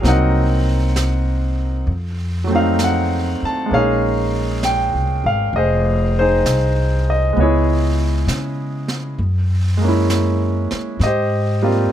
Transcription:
0.02 upright bass C2, grand piano F#3 A#3 C4, brush sweep, snare
0.06 grand piano D#4 A#4 D#5 F#5
0.96 snare, hi-hat pedal
1.87 upright bass F2, brush sweep
2.44 grand piano F#3 A3
2.51 grand piano C4 D#4
2.56 grand piano F5
2.79 snare, hi-hat pedal
2.84 grand piano F#5
3.42 grand piano A5, muted upright bass stroke
3.66 grand piano G#3 A#3
3.71 upright bass A#1, grand piano C#4 G#4 C#5 F5, brush sweep
3.77 grand piano D#4
4.63 grand piano G5, snare, hi-hat pedal
4.94 upright bass C2
5.24 upright bass G#1, grand piano F5
5.53 upright bass F1, grand piano G#4 D#5, brush sweep
5.58 grand piano C5
6.19 grand piano D#4 G#4 C5
6.45 upright bass C2, snare, hi-hat pedal
7.10 grand piano D#5
7.33 upright bass C#2, grand piano G#3 B3
7.38 grand piano C#5 D#5, brush sweep
7.42 grand piano E4 G#4
8.27 upright bass C#3, snare, hi-hat pedal
8.88 snare
9.18 upright bass F#2, brush sweep
9.77 grand piano G#3 A#3
9.85 grand piano C#4 E4
10.10 snare, hi-hat pedal
10.71 muted upright bass stroke, snare
10.99 upright bass G#2, brush sweep, snare
11.04 grand piano G4 C5 D#5
11.62 grand piano G3 A#3 C4 F4

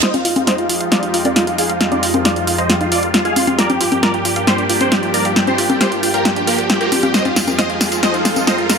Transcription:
0.03 analog synth pad F2 F3 G#3 D#4 G4, synth pluck F4, supersaw synth C5 D#5, snare, closed hi-hat, riser
0.14 synth pluck D#4, supersaw synth F4, closed hi-hat, high conga
0.25 synth pluck F4, supersaw synth F4, open hi-hat
0.36 supersaw synth F4, synth pluck A#4, closed hi-hat, high conga
0.47 synth pluck F4, supersaw synth C5 D#5, snare, closed hi-hat
0.58 synth pluck F4, supersaw synth F4, closed hi-hat
0.69 synth pluck F4, supersaw synth F4, open hi-hat
0.80 supersaw synth F4, synth pluck F5, closed hi-hat
0.92 synth pluck F4, supersaw synth F4 D5, snare, closed hi-hat
1.03 synth pluck D#4, supersaw synth F4, closed hi-hat
1.14 synth pluck F4, supersaw synth F4, open hi-hat
1.25 supersaw synth F4 D5, synth pluck A#4, closed hi-hat, high conga
1.36 synth pluck F4, supersaw synth F4, snare, closed hi-hat
1.47 synth pluck F4, supersaw synth F4, closed hi-hat
1.58 synth pluck F4, supersaw synth G#4 F5, open hi-hat
1.69 supersaw synth F4, synth pluck F5, closed hi-hat
1.81 supersaw synth F4, synth pluck F4, snare, closed hi-hat
1.92 synth pluck D#4, supersaw synth F4 D5, closed hi-hat, high conga
2.03 supersaw synth F4, synth pluck F4, open hi-hat
2.14 supersaw synth F4, synth pluck A#4, closed hi-hat, high conga
2.25 supersaw synth F4 D5, synth pluck F4, snare, closed hi-hat
2.36 synth pluck F4, supersaw synth F4, closed hi-hat
2.47 supersaw synth F4, synth pluck F4, open hi-hat
2.58 supersaw synth C5 D#5, synth pluck F5, closed hi-hat
2.69 supersaw synth F4, synth pluck F4, snare, closed hi-hat
2.81 synth pluck D#4, supersaw synth F4, closed hi-hat
2.92 supersaw synth F4 D5, synth pluck F4, open hi-hat
3.03 supersaw synth F4, synth pluck A#4, closed hi-hat
3.14 supersaw synth F4, synth pluck F4, snare, closed hi-hat
3.25 synth pluck F4, supersaw synth G#4 F5, closed hi-hat
3.36 supersaw synth F4, synth pluck F4, open hi-hat, high conga
3.47 supersaw synth F4, synth pluck F5, closed hi-hat, high conga
3.58 analog synth pad G2 A#3 D4, synth pluck F4, supersaw synth A#4 D5, snare, closed hi-hat
3.70 synth pluck D4, supersaw synth G4, closed hi-hat, high conga
3.81 synth pluck F4, supersaw synth G4, open hi-hat
3.92 supersaw synth G4, synth pluck A#4, closed hi-hat, high conga
4.03 synth pluck F4, supersaw synth A#4 D5, snare, closed hi-hat
4.14 synth pluck F4, supersaw synth G4, closed hi-hat
4.25 synth pluck F4, supersaw synth G4, open hi-hat
4.36 supersaw synth G4, synth pluck F5, closed hi-hat
4.47 synth pluck F4, supersaw synth G4 C5, snare, closed hi-hat
4.58 synth pluck D4, supersaw synth G4, closed hi-hat
4.69 synth pluck F4, supersaw synth G4, open hi-hat
4.81 supersaw synth G4 C5, synth pluck A#4, closed hi-hat, high conga
4.92 synth pluck F4, supersaw synth G4, snare, closed hi-hat
5.03 synth pluck F4, supersaw synth G4, closed hi-hat
5.14 synth pluck F4, supersaw synth A#4 D5, open hi-hat
5.25 supersaw synth G4, synth pluck F5, closed hi-hat
5.36 synth pluck F4, supersaw synth G4, snare, closed hi-hat
5.47 synth pluck D4, supersaw synth G4 C5, closed hi-hat, high conga
5.58 synth pluck F4, supersaw synth G4, open hi-hat
5.70 supersaw synth G4, synth pluck A#4, closed hi-hat, high conga
5.81 synth pluck F4, supersaw synth G4 C5, snare, closed hi-hat
5.92 synth pluck F4, supersaw synth G4, closed hi-hat
6.03 synth pluck F4, supersaw synth G4, open hi-hat
6.14 supersaw synth G4 A#4, synth pluck F5, closed hi-hat
6.25 synth pluck F4, supersaw synth G4, snare, closed hi-hat
6.36 synth pluck D4, supersaw synth G4, closed hi-hat
6.47 supersaw synth A#3 G4, synth pluck F4, open hi-hat
6.58 supersaw synth G4, synth pluck A#4, closed hi-hat
6.69 synth pluck F4, supersaw synth G4, snare, closed hi-hat
6.81 supersaw synth A#3 G4, synth pluck F4, closed hi-hat
6.92 synth pluck F4, supersaw synth G4, open hi-hat, high conga
7.03 supersaw synth G4, synth pluck F5, closed hi-hat, high conga
7.14 analog synth pad F2 G#3 D#4, synth pluck F4, supersaw synth C5 D#5, snare, closed hi-hat, tambourine
7.25 synth pluck D#4, supersaw synth F4, closed hi-hat, high conga
7.36 supersaw synth F4, synth pluck F4, snare, open hi-hat, tambourine
7.47 supersaw synth F4, synth pluck A#4, closed hi-hat, tambourine, high conga
7.58 synth pluck F4, supersaw synth C5 D#5, snare, closed hi-hat, tambourine
7.70 synth pluck F4, supersaw synth F4, closed hi-hat
7.81 synth pluck F4, supersaw synth F4, snare, open hi-hat, tambourine
7.92 supersaw synth F4, synth pluck F5, closed hi-hat, tambourine
8.03 synth pluck F4, supersaw synth C5 D#5, snare, closed hi-hat, tambourine
8.14 synth pluck D#4, supersaw synth F4, closed hi-hat
8.25 synth pluck F4, supersaw synth F4, snare, open hi-hat, tambourine
8.36 supersaw synth F4, synth pluck A#4, closed hi-hat, tambourine, high conga
8.47 synth pluck F4, supersaw synth C5 D#5, snare, closed hi-hat, tambourine
8.58 synth pluck F4, supersaw synth F4, closed hi-hat
8.70 synth pluck F4, supersaw synth F4, snare, open hi-hat, tambourine

